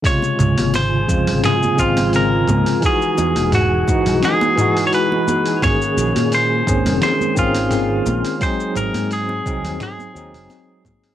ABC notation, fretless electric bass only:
X:1
M:4/4
L:1/16
Q:"Swing 16ths" 1/4=86
K:Db
V:1 name="Fretless electric bass" clef=bass
z2 D,, A,,,3 F,, A,,, z2 A,,,4 D,, z | z2 =E,, =E,,,3 ^G,, =B,,, z8 | z2 B,,, B,,3 E,, F,,, z2 A,,,4 B,,, z | z2 A,,, A,,3 C,, E,, z2 E,, G,,, z4 |]